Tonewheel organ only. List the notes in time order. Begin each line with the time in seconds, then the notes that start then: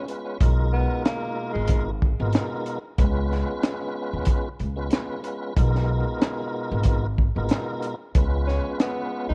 0.06 G#3 B3 C#4 F4 B4
0.40 B2 G#3 D#4 F4 A#4
2.20 B2 G#3 B3 D#4 F4 A#4
2.99 G#3 B3 C#4 F4 B4
4.77 G#3 B3 C#4 F4 B4
4.90 G#3 B3 C#4 F4 B4
5.22 G#3 B3 C#4 F4 B4
5.56 B2 G#3 B3 D#4 F4 A#4
7.35 B2 G#3 B3 D#4 F4 A#4
8.15 G#3 B3 C#4 F4 B4